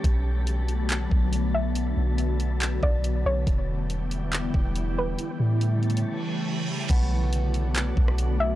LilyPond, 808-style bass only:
\new Staff \with { instrumentName = "808-style bass" } { \clef bass \time 4/4 \key b \minor \tempo 4 = 140 b,,2~ b,,8 b,,4.~ | b,,8 b,,2 b,,4 b,,8 | e,,2~ e,,8 e,,4. | r8 a,4. r2 |
b,,2~ b,,8 b,,4. | }